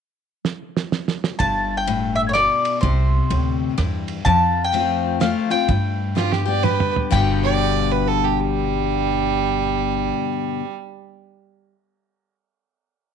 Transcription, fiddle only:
6.16 F4
6.32 G4
6.48 D5
6.64 B4
7.43 D5
7.92 B4
8.08 A4
8.24 G4
8.40 G3

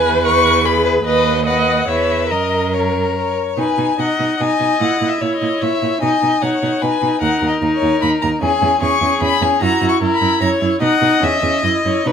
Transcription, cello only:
Already playing: E2
1.06 D#2
1.89 E2
2.31 F#2
3.58 B2
3.78 B2
3.99 B2
4.20 B2
4.40 B2
4.60 B2
4.81 A#2
5.01 A#2
5.22 A#2
5.42 A#2
5.62 A#2
5.83 A#2
6.02 B2
6.23 B2
6.43 B2
6.63 B2
6.83 B2
7.02 B2
7.22 D#2
7.42 D#2
7.62 D#2
7.82 D#2
8.03 D#2
8.23 D#2
8.42 E2
8.62 E2
8.82 E2
9.02 E2
9.22 E2
9.41 E2
9.61 F#2
9.81 F#2
10.01 F#2
10.21 F#2
10.41 F#2
10.61 F#2
10.81 B2
11.02 B2
11.22 E2
11.43 E2
11.64 F#2
11.85 F#2
12.06 B2

